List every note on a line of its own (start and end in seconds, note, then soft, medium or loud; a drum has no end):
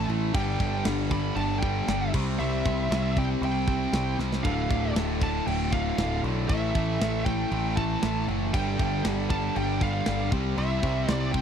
0.00 0.32 A2 loud
0.00 0.33 E3 loud
0.00 0.34 A3 loud
0.09 0.31 A1 medium
0.09 0.33 A2 medium
0.09 0.33 E3 medium
0.09 0.34 A3 medium
0.09 crash medium
0.34 0.57 G1 loud
0.34 0.58 G2 medium
0.34 0.59 D3 loud
0.34 0.60 G3 loud
0.34 0.82 G5 loud
0.34 kick loud
0.34 crash loud
0.59 0.82 G1 medium
0.59 0.85 G2 medium
0.59 0.85 D3 medium
0.59 0.86 G3 medium
0.59 kick medium
0.59 crash medium
0.85 1.30 G1 loud
0.85 1.11 G2 medium
0.85 1.11 D3 loud
0.85 1.12 G3 loud
0.85 snare loud
0.85 crash loud
1.10 1.36 G2 medium
1.10 1.37 D3 loud
1.10 1.37 G3 medium
1.10 1.35 B5 loud
1.10 kick medium
1.10 crash medium
1.35 1.81 G1 loud
1.35 1.61 G2 medium
1.35 1.62 D3 loud
1.35 1.62 G3 loud
1.35 1.59 A5 medium
1.35 crash medium
1.59 1.86 G2 medium
1.59 1.87 D3 medium
1.59 2.09 G5 medium
1.59 kick medium
1.59 crash medium
1.64 1.87 G3 medium
1.87 2.10 G1 medium
1.87 2.12 G2 loud
1.87 2.12 D3 loud
1.87 2.13 G3 loud
1.87 snare loud
1.87 crash medium
2.13 2.36 C2 loud
2.13 2.38 C3 loud
2.13 2.38 G3 loud
2.13 2.39 C4 loud
2.13 kick loud
2.13 crash loud
2.39 2.62 C2 loud
2.39 2.64 C3 medium
2.39 2.64 G3 medium
2.39 2.65 C4 loud
2.39 3.19 E5 loud
2.39 crash medium
2.65 2.88 C2 medium
2.65 2.89 C3 medium
2.65 2.90 G3 medium
2.65 2.91 C4 medium
2.65 kick loud
2.65 crash medium
2.90 3.35 C2 loud
2.90 3.15 C3 medium
2.90 3.15 G3 loud
2.90 3.16 C4 loud
2.90 snare loud
2.90 crash medium
3.16 3.41 C3 medium
3.16 3.41 G3 medium
3.16 3.42 C4 medium
3.16 3.25 G5 loud
3.16 kick medium
3.16 crash medium
3.42 3.86 C2 loud
3.42 3.66 C3 loud
3.42 3.67 G3 loud
3.42 3.67 C4 loud
3.42 4.17 G5 medium
3.42 crash medium
3.67 3.92 C3 medium
3.67 3.92 G3 medium
3.67 3.93 C4 medium
3.67 kick medium
3.67 crash medium
3.93 4.15 C2 loud
3.93 4.17 C3 medium
3.93 4.18 G3 loud
3.93 4.19 C4 loud
3.93 snare loud
3.93 crash medium
4.18 4.41 C2 medium
4.18 4.43 C3 loud
4.18 4.43 G3 medium
4.18 4.44 C4 medium
4.18 snare medium
4.32 snare medium
4.43 4.67 D1 loud
4.43 4.69 D2 medium
4.43 4.69 A2 medium
4.43 4.69 D3 loud
4.43 4.92 F5 loud
4.43 kick loud
4.43 crash medium
4.70 4.92 D1 medium
4.70 4.95 D2 medium
4.70 4.95 A2 medium
4.70 4.96 D3 medium
4.70 kick loud
4.70 crash medium
4.95 5.40 D1 medium
4.95 5.21 D2 medium
4.95 5.21 A2 loud
4.95 5.22 D3 medium
4.95 snare loud
4.95 crash medium
5.21 5.46 D2 medium
5.21 5.47 A2 medium
5.21 5.47 D3 medium
5.21 5.46 A5 loud
5.21 kick loud
5.21 crash medium
5.47 5.91 D1 medium
5.47 5.72 D2 loud
5.47 5.72 A2 loud
5.47 5.72 D3 loud
5.47 5.71 G5 medium
5.47 crash loud
5.72 5.97 D2 medium
5.72 5.97 A2 medium
5.72 5.97 D3 medium
5.72 6.20 F5 medium
5.72 kick loud
5.72 crash medium
5.98 6.20 D1 loud
5.98 6.23 D2 loud
5.98 6.23 A2 loud
5.98 6.24 D3 loud
5.98 snare loud
5.98 crash medium
6.24 6.46 B1 medium
6.24 6.48 D2 medium
6.24 6.48 A2 loud
6.24 6.48 D3 loud
6.24 crash medium
6.49 6.72 A1 loud
6.49 6.74 A2 medium
6.49 6.75 E3 medium
6.49 6.75 A3 loud
6.49 7.28 E5 medium
6.49 kick loud
6.49 crash medium
6.75 6.97 A1 medium
6.75 6.99 A2 medium
6.75 7.00 E3 medium
6.75 7.00 A3 medium
6.75 kick loud
6.75 crash medium
7.00 7.44 A1 loud
7.00 7.25 A2 medium
7.00 7.25 E3 medium
7.00 7.26 A3 medium
7.00 snare loud
7.00 crash medium
7.25 7.50 A2 medium
7.25 7.50 E3 medium
7.25 7.51 A3 medium
7.25 7.77 G5 loud
7.25 kick medium
7.25 crash medium
7.51 7.96 A1 loud
7.51 7.76 A2 loud
7.51 7.77 E3 loud
7.51 7.77 A3 loud
7.51 crash medium
7.77 8.01 A2 medium
7.77 8.01 E3 medium
7.77 8.01 A3 medium
7.77 8.25 A5 loud
7.77 kick medium
7.77 crash medium
8.02 8.25 A1 medium
8.02 8.26 A2 loud
8.02 8.27 E3 loud
8.02 8.28 A3 loud
8.02 snare loud
8.02 crash medium
8.27 8.50 F#1 loud
8.27 8.52 A2 loud
8.27 8.52 E3 loud
8.27 8.52 A3 loud
8.27 crash medium
8.53 8.76 G1 loud
8.53 8.76 G2 medium
8.53 8.77 D3 medium
8.53 8.78 G3 loud
8.53 9.01 G5 loud
8.53 kick loud
8.53 crash medium
8.77 9.01 G1 loud
8.77 9.02 G2 medium
8.77 9.03 D3 medium
8.77 9.04 G3 medium
8.77 kick loud
8.77 crash medium
9.03 9.49 G1 loud
9.03 9.28 G2 loud
9.03 9.29 D3 loud
9.03 9.30 G3 loud
9.03 snare loud
9.03 crash medium
9.29 9.54 G2 medium
9.29 9.54 D3 medium
9.29 9.54 G3 medium
9.29 9.56 A5 loud
9.29 kick loud
9.29 crash medium
9.55 10.00 G1 loud
9.55 9.79 G2 loud
9.55 9.80 D3 loud
9.55 9.80 G3 loud
9.55 9.80 G5 medium
9.55 crash medium
9.80 10.06 G2 medium
9.80 10.06 D3 medium
9.80 10.07 G3 loud
9.80 10.29 F5 medium
9.80 kick medium
9.80 crash medium
10.06 10.29 G1 medium
10.06 10.31 G2 loud
10.06 10.31 D3 loud
10.06 10.31 G3 loud
10.06 snare loud
10.06 crash medium
10.32 10.54 C2 loud
10.32 10.55 C3 medium
10.32 10.56 G3 medium
10.32 10.57 C4 loud
10.32 kick loud
10.32 crash medium
10.57 10.80 C2 loud
10.57 10.81 C3 medium
10.57 10.82 G3 medium
10.57 10.82 C4 loud
10.57 11.11 E5 loud
10.57 crash medium
10.82 11.05 C2 medium
10.82 11.07 C3 medium
10.82 11.07 G3 medium
10.82 11.08 C4 medium
10.82 kick loud
10.82 crash medium
11.08 11.41 C2 loud
11.08 11.31 C3 loud
11.08 11.32 G3 medium
11.08 11.32 C4 medium
11.08 11.30 D5 loud
11.08 snare loud
11.08 crash medium
11.32 11.41 C3 medium
11.32 11.41 G3 medium
11.32 11.41 C4 medium
11.32 11.41 G5 loud
11.32 kick loud
11.32 crash medium